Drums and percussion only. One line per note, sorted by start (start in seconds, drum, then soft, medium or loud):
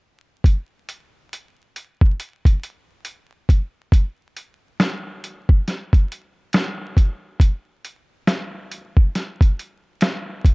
0.44 kick medium
0.44 closed hi-hat medium
0.89 closed hi-hat medium
1.33 closed hi-hat medium
1.76 closed hi-hat medium
2.01 kick medium
2.20 closed hi-hat medium
2.45 kick medium
2.45 closed hi-hat soft
2.63 closed hi-hat medium
3.05 closed hi-hat medium
3.49 kick medium
3.49 closed hi-hat medium
3.92 kick medium
3.92 closed hi-hat medium
4.36 closed hi-hat medium
4.80 snare medium
4.80 closed hi-hat medium
5.24 closed hi-hat medium
5.49 kick medium
5.68 snare soft
5.68 closed hi-hat medium
5.93 kick medium
5.93 closed hi-hat soft
6.12 closed hi-hat medium
6.53 snare loud
6.53 closed hi-hat medium
6.97 kick medium
6.97 closed hi-hat medium
7.40 kick medium
7.40 closed hi-hat medium
7.85 closed hi-hat medium
8.27 snare medium
8.27 closed hi-hat medium
8.72 closed hi-hat medium
8.97 kick medium
9.15 snare soft
9.15 closed hi-hat medium
9.41 kick medium
9.41 closed hi-hat soft
9.59 closed hi-hat medium
10.01 snare loud
10.01 closed hi-hat medium
10.45 kick medium
10.45 closed hi-hat medium